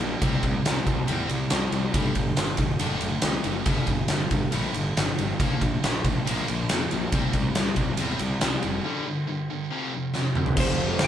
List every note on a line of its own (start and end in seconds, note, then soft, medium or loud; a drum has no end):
0.00 0.14 A#1 medium
0.00 0.20 A#2 medium
0.00 0.20 F3 medium
0.22 0.37 C2 medium
0.22 0.42 C3 medium
0.22 0.43 G3 medium
0.22 0.43 C4 medium
0.22 kick loud
0.22 ride medium
0.43 0.58 C2 medium
0.43 0.64 C3 medium
0.43 0.64 G3 medium
0.43 kick medium
0.43 ride medium
0.65 0.80 C2 medium
0.65 0.85 C3 medium
0.65 0.85 G3 medium
0.65 snare loud
0.65 ride medium
0.86 1.01 C2 medium
0.86 1.06 C3 medium
0.86 1.06 G3 medium
0.86 kick medium
0.86 ride medium
1.07 1.24 E2 medium
1.07 1.26 C3 medium
1.07 1.27 G3 loud
1.07 1.29 C4 medium
1.07 ride medium
1.28 1.44 C2 medium
1.28 1.48 C3 medium
1.28 1.49 G3 medium
1.28 ride medium
1.50 1.66 C2 medium
1.50 1.70 C3 medium
1.50 1.70 G3 medium
1.50 snare loud
1.50 ride medium
1.71 1.87 C2 medium
1.71 1.92 C3 medium
1.71 1.92 G3 medium
1.71 ride medium
1.93 2.09 G1 medium
1.93 2.14 G2 medium
1.93 2.14 D3 medium
1.93 2.15 G3 loud
1.93 kick loud
1.93 ride medium
2.15 2.31 G1 medium
2.15 2.35 G2 medium
2.15 2.35 D3 medium
2.15 kick medium
2.15 ride medium
2.37 2.52 G1 medium
2.37 2.57 G2 medium
2.37 2.58 D3 medium
2.37 snare loud
2.37 ride medium
2.57 2.74 F1 medium
2.57 2.79 G2 medium
2.57 2.79 D3 medium
2.57 kick medium
2.57 ride medium
2.79 2.95 F#1 medium
2.79 3.01 D3 medium
2.79 3.02 A3 medium
2.79 3.02 D4 medium
2.79 ride medium
3.01 3.16 F#1 medium
3.01 3.22 D3 medium
3.01 3.22 A3 medium
3.01 ride medium
3.22 3.39 C2 medium
3.22 3.43 D3 medium
3.22 3.43 A3 medium
3.22 snare loud
3.22 ride medium
3.44 3.60 F#1 medium
3.44 3.65 D3 medium
3.44 3.66 A3 medium
3.44 ride medium
3.66 3.82 G1 medium
3.66 3.87 G2 medium
3.66 3.87 D3 medium
3.66 3.88 G3 medium
3.66 kick loud
3.66 ride medium
3.87 4.03 G1 medium
3.87 4.08 G2 medium
3.87 4.08 D3 medium
3.87 kick medium
3.87 ride medium
4.08 4.25 G1 medium
4.08 4.29 G2 medium
4.08 4.29 D3 medium
4.08 snare loud
4.08 ride medium
4.31 4.46 G1 medium
4.31 4.50 G2 medium
4.31 4.51 D3 medium
4.31 kick medium
4.31 ride medium
4.51 4.69 A#1 medium
4.51 4.73 G2 medium
4.51 4.74 D3 medium
4.51 4.74 G3 medium
4.51 ride medium
4.74 4.90 G1 medium
4.74 4.94 G2 medium
4.74 4.95 D3 medium
4.74 ride medium
4.96 5.11 G1 medium
4.96 5.17 G2 medium
4.96 5.17 D3 medium
4.96 snare loud
4.96 ride medium
5.18 5.34 G1 medium
5.18 5.38 G2 medium
5.18 5.39 D3 medium
5.18 ride medium
5.40 5.54 A#1 medium
5.40 5.61 A#2 medium
5.40 5.61 F3 medium
5.40 5.61 A#3 medium
5.40 kick loud
5.40 ride medium
5.61 5.76 A#1 medium
5.61 5.81 A#2 medium
5.61 5.82 F3 medium
5.61 kick medium
5.61 ride medium
5.84 5.98 A#1 medium
5.84 6.03 A#2 medium
5.84 6.03 F3 medium
5.84 snare loud
5.84 ride medium
6.05 6.19 A#1 medium
6.05 6.24 A#2 medium
6.05 6.25 F3 medium
6.05 kick medium
6.05 ride medium
6.25 6.46 A#2 medium
6.25 6.46 F3 medium
6.25 6.47 A#3 loud
6.25 ride loud
6.30 6.43 A#1 medium
6.48 6.63 A#1 medium
6.48 6.67 A#2 medium
6.48 6.68 F3 medium
6.48 ride medium
6.69 6.85 F2 medium
6.69 6.90 A#2 medium
6.69 6.90 F3 medium
6.69 snare loud
6.69 ride medium
6.91 7.07 A#1 medium
6.91 7.11 A#2 medium
6.91 7.11 F3 medium
6.91 ride medium
7.12 7.28 C2 loud
7.12 7.34 C3 medium
7.12 7.34 G3 medium
7.12 7.34 C4 loud
7.12 kick loud
7.12 ride loud
7.33 7.48 C2 medium
7.33 7.54 C3 medium
7.33 7.54 G3 medium
7.33 kick medium
7.33 ride medium
7.55 7.70 C2 medium
7.55 7.75 C3 medium
7.55 7.75 G3 medium
7.55 snare loud
7.55 ride medium
7.76 7.92 C2 medium
7.76 7.97 C3 medium
7.76 7.97 G3 medium
7.76 kick medium
7.76 ride medium
7.97 8.13 E2 medium
7.97 8.19 C3 medium
7.97 8.19 G3 medium
7.97 8.20 C4 loud
7.97 ride medium
8.19 8.35 C2 medium
8.19 8.40 C3 medium
8.19 8.40 G3 medium
8.19 ride medium
8.41 8.57 C2 medium
8.41 8.61 C3 medium
8.41 8.61 G3 medium
8.41 snare loud
8.41 ride medium
8.62 8.79 F1 medium
8.62 8.82 C3 medium
8.62 8.82 G3 medium
8.62 ride medium
8.85 9.05 G2 medium
8.85 9.05 D3 medium
8.85 9.06 G3 medium
9.06 9.26 G2 medium
9.06 9.26 D3 medium
9.27 9.47 G2 medium
9.27 9.47 D3 medium
9.50 9.69 G2 medium
9.50 9.69 D3 medium
9.71 9.91 F2 medium
9.71 9.92 C3 loud
9.71 9.91 F3 medium
9.94 10.13 F2 medium
9.94 10.13 C3 medium
10.14 10.33 F2 medium
10.14 10.33 C3 medium
10.14 snare medium
10.35 10.55 F2 medium
10.35 10.55 C3 medium
10.35 mid tom medium
10.46 floor tom medium
10.57 10.89 F1 medium
10.57 11.07 F2 medium
10.57 11.07 C3 medium
10.57 11.07 A3 medium
10.57 11.07 C4 loud
10.57 11.07 F4 medium
10.57 11.07 C5 medium
10.57 11.03 C5 medium
10.57 11.07 G5 medium
10.57 kick loud
10.57 crash loud
10.61 11.07 F3 loud
10.99 11.07 F1 medium
10.99 snare loud
10.99 open hi-hat medium
11.04 11.07 G5 medium